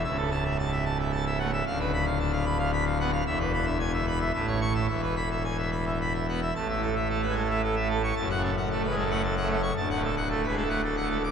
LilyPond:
<<
  \new Staff \with { instrumentName = "Pipe organ" } { \time 3/4 \key a \major \tempo 4 = 112 e''16 a'16 a''16 e''16 a''16 e''16 a''16 e''16 a''16 e''16 fis''16 e''16 | f''16 b'16 b''16 f''16 a''16 f''16 b''16 f''16 b''16 f''16 fis''16 f''16 | e''16 b'16 b''16 e''16 gis''16 e''16 b''16 e''16 e''16 cis''16 cis'''16 e''16 | e''16 b'16 b''16 e''16 gis''16 e''16 b''16 e''16 b''16 e''16 fis''16 e''16 |
a''16 e''16 a'16 e''16 a'16 b'16 a'16 e''16 a'16 e''16 a'16 cis'''16 | a''16 fis''16 a'16 fis''16 a'16 b'16 a'16 fis''16 a'16 fis''16 a'16 cis'''16 | a''16 fis''16 a'16 fis''16 a'16 b'16 a'16 fis''16 a'16 fis''16 a'16 d'''16 | }
  \new Staff \with { instrumentName = "Pipe organ" } { \clef bass \time 3/4 \key a \major << { cis,2~ cis,8 a16 r16 | d,2~ d,8 b16 r16 | e,2 a,4 | e,2~ e,8 b16 r16 |
\tuplet 3/2 { a,8 e8 r8 a8 gis8 a8 r8 a8 r8 } | \tuplet 3/2 { fis,8 cis8 r8 a8 gis8 a8 r8 a8 r8 } | \tuplet 3/2 { d,8 a,8 r8 a8 gis8 a8 r8 a8 r8 } | } \\ { cis,,2. | d,,2. | e,,2 a,,4 | e,,2. |
a,,2. | fis,,2. | d,,2. | } >> }
>>